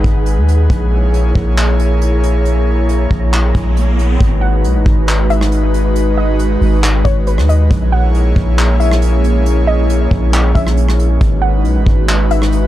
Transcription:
Already playing: analog synth pad G#3 D#4 G#4 B4, synth texture G#4 F#5 B5
0.04 808-style bass G#1, kick, closed hi-hat
0.26 closed hi-hat
0.37 808-style bass D#2
0.48 closed hi-hat
0.70 808-style bass A#1, analog synth pad A#3 E4 C#5, synth texture C#5 A#5, kick, closed hi-hat
1.14 closed hi-hat
1.35 808-style bass A#1, kick
1.58 clap, closed hi-hat
1.79 closed hi-hat
2.01 closed hi-hat
2.24 closed hi-hat
2.45 closed hi-hat, riser
2.89 closed hi-hat
3.11 808-style bass A#1, kick
3.33 clap, closed hi-hat
3.55 808-style bass A#1, kick, closed hi-hat
3.77 closed hi-hat
3.99 closed hi-hat
4.20 808-style bass G#1, synth texture G#3 F#4 B4, analog synth pad G#3 D#4 F#4 B4, kick, closed hi-hat
4.41 synth pluck F#5
4.64 808-style bass B1, closed hi-hat
4.75 808-style bass G#1
4.86 808-style bass G#1, kick
5.08 clap, closed hi-hat
5.30 synth pluck E5, closed hi-hat
5.41 cross-stick
5.52 closed hi-hat
5.74 closed hi-hat
5.96 synth texture G#4, closed hi-hat
6.18 synth pluck D#5
6.39 closed hi-hat
6.61 808-style bass G#1, open hi-hat
6.84 clap, closed hi-hat
7.05 808-style bass G#1, synth pluck C#5, kick, closed hi-hat
7.27 synth pluck B4, closed hi-hat
7.38 808-style bass D#2, cross-stick
7.49 synth pluck D#5, closed hi-hat
7.71 808-style bass A#1, analog synth pad A#3 E4 G#4 C#5, synth texture C#4 A#4, kick, closed hi-hat
7.92 synth pluck F#5
8.14 closed hi-hat
8.36 808-style bass A#1, kick
8.59 clap, closed hi-hat
8.80 synth pluck E5, closed hi-hat
8.91 cross-stick
9.02 closed hi-hat
9.24 closed hi-hat
9.46 closed hi-hat
9.67 synth pluck D#5
9.90 closed hi-hat
10.11 808-style bass A#1, kick
10.34 clap, closed hi-hat
10.55 808-style bass A#1, synth pluck E5, kick, closed hi-hat
10.67 cross-stick
10.77 closed hi-hat
10.89 cross-stick
10.99 closed hi-hat
11.21 808-style bass G#1, analog synth pad G#3 D#4 F#4 B4, synth texture F#4 B4, kick, closed hi-hat
11.42 synth pluck F#5
11.65 808-style bass B1, closed hi-hat
11.76 808-style bass G#1
11.86 808-style bass G#1, kick
12.09 clap, closed hi-hat
12.31 synth pluck E5, closed hi-hat
12.42 cross-stick
12.52 closed hi-hat

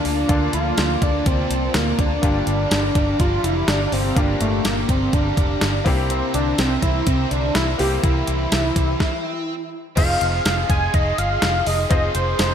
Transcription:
Already playing: distorted electric guitar A#2 F3 A#3 D4, grand piano D3 A#3 D4 F4 A4, string machine A#3 F4 D5 A5, analog synth lead D4
0.05 fingered electric bass D2, open hi-hat
0.28 fingered electric bass D2, distorted electric guitar A#2 F3 A#3, grand piano D3 A#3 D4 F4 A4, analog synth lead D4, string machine A5, kick, closed hi-hat
0.53 fingered electric bass D2, analog synth lead F4, closed hi-hat
0.77 fingered electric bass D2, distorted electric guitar A#2 F3 A#3, snare, closed hi-hat, tambourine
1.02 fingered electric bass D2, analog synth lead D4, kick, closed hi-hat
1.25 fingered electric bass D2, distorted electric guitar A#2 F3 A#3, analog synth lead C4, kick, closed hi-hat
1.50 fingered electric bass C2, closed hi-hat
1.74 fingered electric bass D2, distorted electric guitar A#2 F3 A#3, analog synth lead A#3, snare, closed hi-hat, tambourine
1.99 fingered electric bass D2, analog synth lead D4, kick, closed hi-hat
2.22 fingered electric bass G1, distorted electric guitar G2 D3 G3, grand piano G2 A#3 D4 F4 G4, string machine G4 F5 A#5, kick, closed hi-hat
2.47 fingered electric bass G1, closed hi-hat
2.71 fingered electric bass G1, distorted electric guitar G2 D3 G3, snare, closed hi-hat, tambourine
2.95 fingered electric bass G1, kick, closed hi-hat
3.19 fingered electric bass G1, distorted electric guitar G2 D3 G3, analog synth lead F4, kick, closed hi-hat
3.44 fingered electric bass F1, analog synth lead E4, closed hi-hat
3.67 fingered electric bass G1, distorted electric guitar G2 D3 G3, analog synth lead D4, snare, closed hi-hat, tambourine
3.87 analog synth lead D4
3.92 fingered electric bass G1, analog synth lead C4, open hi-hat
4.15 fingered electric bass G1, distorted electric guitar G2 D3 G3, grand piano G2 A#3 D4 F4 G4, analog synth lead D4, kick, closed hi-hat
4.40 fingered electric bass G1, analog synth lead A3, closed hi-hat
4.64 fingered electric bass G1, distorted electric guitar G2 D3 G3, analog synth lead A#3, snare, closed hi-hat, tambourine
4.89 fingered electric bass G1, analog synth lead C4, kick, closed hi-hat
5.12 fingered electric bass G1, distorted electric guitar G2 D3 G3, analog synth lead D4, kick, closed hi-hat
5.37 fingered electric bass F1, kick, closed hi-hat
5.60 fingered electric bass G1, distorted electric guitar G2 D3 G3, snare, closed hi-hat, tambourine
5.85 fingered electric bass C2, grand piano C3 A#3 C4 E4 G4, distorted electric guitar C3 G3 C4, string machine C5 E5 A#5, kick, open hi-hat
6.10 analog synth lead C4, closed hi-hat
6.34 fingered electric bass C2, analog synth lead D4, closed hi-hat
6.57 fingered electric bass C2, distorted electric guitar C3 G3 C4, analog synth lead C4, snare, closed hi-hat, tambourine
6.82 fingered electric bass C2, analog synth lead E4, kick, closed hi-hat
7.05 fingered electric bass C2, distorted electric guitar C3 G3 C4, analog synth lead C4, kick, closed hi-hat
7.31 fingered electric bass C2, analog synth lead D4, closed hi-hat
7.54 fingered electric bass C2, distorted electric guitar C3 G3 C4, analog synth lead E4, snare, closed hi-hat, tambourine
7.78 fingered electric bass C2, grand piano C3 A#3 C4 E4 G4, analog synth lead G4, open hi-hat
8.02 fingered electric bass C2, distorted electric guitar C3 G3, analog synth lead E4, kick, closed hi-hat
8.07 distorted electric guitar C4
8.27 fingered electric bass C2, closed hi-hat
8.52 fingered electric bass C2, snare, closed hi-hat, tambourine
8.76 fingered electric bass C2, kick, closed hi-hat
9.00 kick, snare
9.96 fingered electric bass F1, distorted electric guitar F2 C3 F3, grand piano C4 D#4 F4 G#4 C5, string machine G#4 D#5 F5 C6, analog synth lead F5, kick, closed hi-hat, crash
10.21 fingered electric bass F1, closed hi-hat
10.45 fingered electric bass F1, distorted electric guitar F2 C3 F3, analog synth lead F5, snare, closed hi-hat, tambourine
10.70 fingered electric bass F1, analog synth lead G#5, kick, closed hi-hat
10.93 fingered electric bass F1, distorted electric guitar F2 C3 F3, analog synth lead D#5, kick, closed hi-hat
11.18 fingered electric bass G1, analog synth lead F5, closed hi-hat
11.41 fingered electric bass F1, distorted electric guitar F2 C3 F3, snare, closed hi-hat, tambourine
11.67 fingered electric bass F1, analog synth lead D#5, open hi-hat
11.89 fingered electric bass F1, distorted electric guitar F2 C3, grand piano C4 D#4 F4 G#4 C5, analog synth lead D#5, string machine A#5, kick, closed hi-hat
11.94 distorted electric guitar F3
12.15 fingered electric bass F1, analog synth lead C5, closed hi-hat
12.39 fingered electric bass F1, analog synth lead C5, snare, closed hi-hat, tambourine

